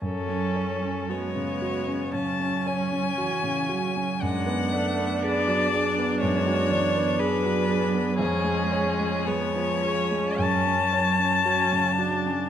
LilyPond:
<<
  \new Staff \with { instrumentName = "Violin" } { \time 4/4 \key fis \minor \tempo 4 = 58 a'4 cis''4 a''8 gis''4. | fis''4 d''4 cis''4 b'4 | gis'4 cis''4 a''2 | }
  \new Staff \with { instrumentName = "Grand piano" } { \time 4/4 \key fis \minor fis,16 cis'16 cis''16 cis'16 fis'16 cis16 fis'16 cis'16 cis16 cis'16 cis''16 cis'16 fis'16 cis16 fis'16 cis'16 | fis,16 b16 d''16 b16 gis'16 fis16 gis'16 b16 fis,16 fis16 d''16 b16 gis'16 fis16 gis'16 b16 | eis,16 gis16 cis''16 gis16 gis'16 eis16 gis'16 gis16 fis,16 cis'16 cis''16 cis'16 fis'16 cis16 fis'16 cis'16 | }
  \new Staff \with { instrumentName = "Viola" } { \time 4/4 \key fis \minor cis'4 b4 cis'2 | d'1 | cis'4 b8 cis'4. cis'8 d'8 | }
  \new Staff \with { instrumentName = "Cello" } { \clef bass \time 4/4 \key fis \minor fis4 gis4 fis4 e8 fis8 | gis8 a8 b8 fis8 gis8 e8 fis4 | gis4 eis4 fis2 | }
>>